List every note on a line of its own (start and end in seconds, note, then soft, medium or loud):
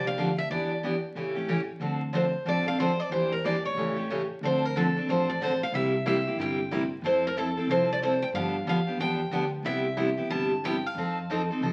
0.00 0.13 C2 medium
0.06 0.17 A#3 soft
0.06 0.17 D4 soft
0.06 0.17 G4 medium
0.06 0.38 F5 medium
0.17 0.45 D2 medium
0.17 0.29 D3 medium
0.17 0.29 F3 medium
0.17 0.29 A#3 medium
0.17 0.29 D4 medium
0.17 0.29 G4 medium
0.38 0.50 E5 medium
0.50 1.02 E2 medium
0.50 0.71 E3 medium
0.50 0.71 B3 medium
0.50 0.71 D4 medium
0.50 0.71 G4 medium
0.50 0.81 D5 medium
0.83 0.94 E3 medium
0.83 0.94 B3 medium
0.83 0.94 D4 medium
0.83 0.95 G4 medium
1.15 1.67 A1 medium
1.15 1.35 C#3 medium
1.15 1.35 E3 medium
1.15 1.35 A3 medium
1.15 1.35 C#4 medium
1.15 1.34 G4 medium
1.35 1.47 A3 soft
1.35 1.47 C#4 soft
1.35 1.47 G4 medium
1.48 1.59 C#3 medium
1.48 1.59 E3 medium
1.48 1.59 A3 medium
1.48 1.59 C#4 medium
1.48 1.59 G4 medium
1.80 2.32 D2 medium
1.80 2.01 D3 medium
1.80 2.01 F3 medium
1.80 2.01 C4 medium
1.80 2.01 D4 medium
1.80 2.01 A4 medium
2.13 2.24 D3 medium
2.13 2.24 F3 medium
2.13 2.24 C4 medium
2.13 2.24 D4 medium
2.13 2.25 A4 medium
2.13 2.47 C5 medium
2.45 2.97 A1 medium
2.45 2.65 D3 medium
2.45 2.65 F3 medium
2.45 2.65 C4 medium
2.45 2.65 D4 medium
2.45 2.65 A4 medium
2.45 2.66 D5 medium
2.66 2.79 C4 soft
2.66 2.78 D4 soft
2.66 2.78 A4 soft
2.66 2.80 F5 medium
2.79 2.90 D3 medium
2.79 2.90 F3 medium
2.79 2.90 C4 medium
2.79 2.90 D4 medium
2.79 2.90 A4 medium
2.79 3.00 C5 medium
3.00 3.11 D5 medium
3.09 3.62 E2 medium
3.09 3.31 E3 medium
3.09 3.32 A#3 medium
3.09 3.32 D4 medium
3.09 3.32 G4 medium
3.09 3.32 C5 medium
3.32 3.43 A#4 medium
3.44 3.55 E3 medium
3.44 3.55 A#3 medium
3.44 3.55 D4 medium
3.44 3.55 G4 medium
3.44 3.65 D5 medium
3.65 4.26 C#5 medium
3.74 4.27 A1 medium
3.74 3.96 C#3 medium
3.74 3.96 E3 medium
3.74 3.96 A3 medium
3.74 3.96 C#4 medium
3.74 3.95 G4 medium
3.96 4.09 A3 soft
3.96 4.09 C#4 soft
3.96 4.08 G4 soft
4.10 4.21 C#3 medium
4.10 4.21 E3 medium
4.10 4.21 A3 medium
4.10 4.21 C#4 medium
4.10 4.21 G4 medium
4.41 4.93 D2 medium
4.41 4.63 D3 medium
4.41 4.63 F3 medium
4.41 4.63 C4 medium
4.41 4.63 D4 medium
4.41 4.63 A4 medium
4.45 4.65 C5 medium
4.65 4.76 A#4 medium
4.76 4.86 D3 medium
4.76 4.86 F3 medium
4.76 4.86 C4 medium
4.76 4.86 D4 medium
4.76 4.86 A4 medium
4.76 5.09 A4 medium
4.96 5.08 C4 soft
4.96 5.08 D4 soft
4.96 5.07 A4 soft
5.06 5.59 A1 medium
5.06 5.28 D3 medium
5.06 5.28 F3 medium
5.06 5.28 C4 medium
5.06 5.29 D4 medium
5.06 5.29 A4 medium
5.10 5.27 C5 medium
5.30 5.43 D5 medium
5.41 5.51 D3 medium
5.41 5.52 F3 medium
5.41 5.52 C4 medium
5.41 5.52 D4 medium
5.41 5.52 A4 medium
5.41 5.62 C5 medium
5.63 5.73 F5 medium
5.72 6.24 C2 medium
5.72 5.93 C3 medium
5.72 5.93 G3 medium
5.72 5.94 A#3 medium
5.72 5.94 E4 medium
5.72 5.94 G4 medium
5.72 6.06 E5 medium
6.06 6.16 C3 medium
6.06 6.16 G3 medium
6.06 6.16 A#3 medium
6.06 6.17 E4 medium
6.06 6.17 G4 medium
6.06 6.37 E5 medium
6.27 6.38 A#3 soft
6.27 6.38 E4 soft
6.27 6.38 G4 medium
6.36 6.89 G1 medium
6.36 6.59 C3 medium
6.36 6.59 G3 medium
6.36 6.59 A#3 medium
6.36 6.59 E4 medium
6.40 6.60 G4 medium
6.40 6.89 G5 medium
6.71 6.82 C3 medium
6.71 6.82 G3 medium
6.71 6.82 A#3 medium
6.71 6.82 E4 medium
6.71 6.82 G4 medium
7.02 7.55 F2 medium
7.02 7.24 F3 medium
7.02 7.24 C4 medium
7.02 7.25 E4 medium
7.02 7.25 A4 medium
7.02 7.25 C5 medium
7.27 7.37 A#4 medium
7.36 7.47 F3 medium
7.36 7.48 C4 medium
7.36 7.47 E4 medium
7.36 7.48 A4 medium
7.36 7.67 A4 medium
7.57 7.69 C4 soft
7.57 7.69 E4 medium
7.57 7.69 A4 medium
7.67 8.20 C2 medium
7.67 7.90 F3 medium
7.67 7.90 C4 medium
7.67 7.90 E4 medium
7.67 7.90 A4 medium
7.67 7.88 C5 medium
7.93 7.97 D5 medium
8.02 8.13 F3 medium
8.02 8.13 C4 medium
8.02 8.13 E4 medium
8.02 8.13 A4 medium
8.02 8.23 C5 medium
8.22 8.27 G5 medium
8.33 8.59 G2 medium
8.33 8.55 D3 medium
8.33 8.55 F3 medium
8.33 8.55 B3 medium
8.33 8.55 D4 medium
8.33 8.56 G4 medium
8.33 8.68 F5 medium
8.65 8.94 F2 medium
8.65 8.78 D3 medium
8.65 8.78 F3 medium
8.65 8.78 B3 medium
8.65 8.78 D4 medium
8.65 8.79 G4 medium
8.69 9.00 F5 medium
8.87 8.99 B3 soft
8.87 8.99 D4 medium
8.87 8.99 G4 medium
8.98 9.26 E2 medium
8.98 9.20 D3 medium
8.98 9.20 F3 medium
8.98 9.20 B3 medium
8.98 9.21 D4 medium
8.98 9.20 G4 medium
8.98 9.49 G5 medium
9.31 9.59 D2 medium
9.31 9.43 D3 medium
9.31 9.43 F3 medium
9.31 9.43 B3 medium
9.31 9.44 D4 medium
9.31 9.44 G4 medium
9.63 10.16 C2 medium
9.63 9.85 C3 medium
9.63 9.85 G3 medium
9.63 9.86 B3 medium
9.63 9.86 E4 medium
9.63 9.86 G4 medium
9.63 10.27 E5 medium
9.97 10.08 C3 medium
9.97 10.08 G3 medium
9.97 10.08 B3 medium
9.97 10.09 E4 medium
9.97 10.09 G4 medium
10.17 10.29 B3 soft
10.17 10.30 E4 soft
10.17 10.30 G4 medium
10.30 10.82 G1 medium
10.30 10.51 C3 medium
10.30 10.51 G3 medium
10.30 10.51 B3 medium
10.30 10.51 E4 medium
10.30 10.51 G4 medium
10.30 10.64 A5 loud
10.64 10.75 C3 medium
10.64 10.75 G3 medium
10.64 10.75 B3 medium
10.64 10.75 E4 medium
10.64 10.75 G4 medium
10.64 10.86 G5 medium
10.86 11.30 F5 medium
10.95 11.48 F2 medium
10.95 11.18 F3 medium
10.95 11.18 C4 medium
10.95 11.18 D#4 medium
10.95 11.18 A4 medium
11.30 11.40 F3 medium
11.30 11.41 C4 medium
11.30 11.41 D#4 medium
11.30 11.41 A4 loud
11.51 11.61 C4 soft
11.51 11.62 D#4 soft
11.51 11.62 A4 medium
11.61 11.73 C2 medium
11.61 11.73 F3 medium
11.61 11.73 C4 medium
11.61 11.73 D#4 medium
11.61 11.73 A4 medium